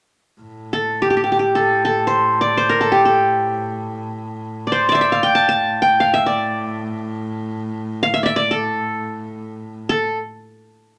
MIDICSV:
0, 0, Header, 1, 3, 480
1, 0, Start_track
1, 0, Key_signature, 0, "minor"
1, 0, Tempo, 500000
1, 10546, End_track
2, 0, Start_track
2, 0, Title_t, "Qanun"
2, 0, Program_c, 0, 107
2, 701, Note_on_c, 0, 69, 62
2, 978, Note_on_c, 0, 67, 60
2, 1055, Note_off_c, 0, 67, 0
2, 1059, Note_on_c, 0, 67, 46
2, 1117, Note_off_c, 0, 67, 0
2, 1121, Note_on_c, 0, 67, 49
2, 1184, Note_off_c, 0, 67, 0
2, 1188, Note_on_c, 0, 67, 44
2, 1262, Note_off_c, 0, 67, 0
2, 1265, Note_on_c, 0, 67, 46
2, 1333, Note_off_c, 0, 67, 0
2, 1336, Note_on_c, 0, 67, 46
2, 1486, Note_off_c, 0, 69, 0
2, 1490, Note_on_c, 0, 69, 60
2, 1771, Note_off_c, 0, 69, 0
2, 1775, Note_on_c, 0, 69, 65
2, 1988, Note_on_c, 0, 72, 72
2, 2314, Note_on_c, 0, 74, 74
2, 2467, Note_off_c, 0, 72, 0
2, 2471, Note_on_c, 0, 72, 71
2, 2542, Note_off_c, 0, 67, 0
2, 2587, Note_on_c, 0, 70, 72
2, 2644, Note_off_c, 0, 69, 0
2, 2694, Note_on_c, 0, 69, 68
2, 2752, Note_off_c, 0, 70, 0
2, 2801, Note_on_c, 0, 67, 67
2, 2927, Note_off_c, 0, 69, 0
2, 2931, Note_on_c, 0, 69, 62
2, 3259, Note_off_c, 0, 74, 0
2, 3485, Note_off_c, 0, 72, 0
2, 4006, Note_off_c, 0, 67, 0
2, 4114, Note_off_c, 0, 69, 0
2, 4483, Note_on_c, 0, 74, 53
2, 4530, Note_on_c, 0, 72, 69
2, 4688, Note_off_c, 0, 74, 0
2, 4692, Note_on_c, 0, 74, 73
2, 4723, Note_on_c, 0, 76, 61
2, 4746, Note_off_c, 0, 74, 0
2, 4750, Note_on_c, 0, 74, 68
2, 4806, Note_off_c, 0, 76, 0
2, 4810, Note_on_c, 0, 76, 72
2, 4916, Note_on_c, 0, 77, 76
2, 4973, Note_off_c, 0, 76, 0
2, 5021, Note_on_c, 0, 79, 80
2, 5136, Note_on_c, 0, 81, 80
2, 5263, Note_off_c, 0, 81, 0
2, 5267, Note_on_c, 0, 81, 83
2, 5544, Note_off_c, 0, 72, 0
2, 5583, Note_off_c, 0, 79, 0
2, 5587, Note_on_c, 0, 79, 78
2, 5695, Note_off_c, 0, 74, 0
2, 5758, Note_off_c, 0, 77, 0
2, 5762, Note_on_c, 0, 77, 77
2, 5891, Note_on_c, 0, 76, 74
2, 5948, Note_off_c, 0, 77, 0
2, 6009, Note_off_c, 0, 81, 0
2, 6013, Note_on_c, 0, 74, 66
2, 6382, Note_off_c, 0, 79, 0
2, 6773, Note_off_c, 0, 76, 0
2, 7078, Note_off_c, 0, 74, 0
2, 7706, Note_on_c, 0, 77, 86
2, 7812, Note_on_c, 0, 76, 82
2, 7819, Note_off_c, 0, 77, 0
2, 7894, Note_off_c, 0, 76, 0
2, 7901, Note_on_c, 0, 74, 62
2, 7926, Note_on_c, 0, 76, 88
2, 7927, Note_off_c, 0, 74, 0
2, 8027, Note_on_c, 0, 74, 81
2, 8046, Note_off_c, 0, 76, 0
2, 8169, Note_on_c, 0, 69, 70
2, 8172, Note_off_c, 0, 74, 0
2, 9225, Note_off_c, 0, 69, 0
2, 9498, Note_on_c, 0, 69, 76
2, 9760, Note_off_c, 0, 69, 0
2, 10546, End_track
3, 0, Start_track
3, 0, Title_t, "Double bass"
3, 0, Program_c, 1, 43
3, 391, Note_on_c, 1, 45, 50
3, 4944, Note_off_c, 1, 45, 0
3, 4950, Note_on_c, 1, 45, 64
3, 9548, Note_off_c, 1, 45, 0
3, 10546, End_track
0, 0, End_of_file